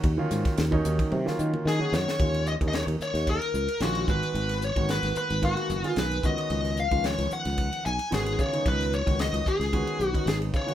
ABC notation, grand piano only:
X:1
M:4/4
L:1/16
Q:"Swing 16ths" 1/4=111
K:D#m
V:1 name="Grand piano"
z [D,F,A,CE]3 z [D,F,A,CD]3 z [D,F,A,CE]3 z [D,F,A,CF]3 | [D,G,A,CE]2 z [D,G,A,CD]6- [D,G,A,CD] z2 [D,G,A,CE]2 [D,F,G,B,F]2- | [D,F,G,B,F]2 z [D,G,A,B,F]4 z [D,G,A,B,e]2 z [D,G,A,B,G]3 [D,G,B,CF]2- | [D,G,B,CF]2 z [D,E,G,B,C]6- [D,E,G,B,C] z2 [D,G,B,CF]2 z [D,G,B,CD]- |
[D,G,B,CD]2 z [D,G,B,CF]4 z [D,G,B,CF]2 z [D,G,B,CD]3 z [D,G,B,CF] |]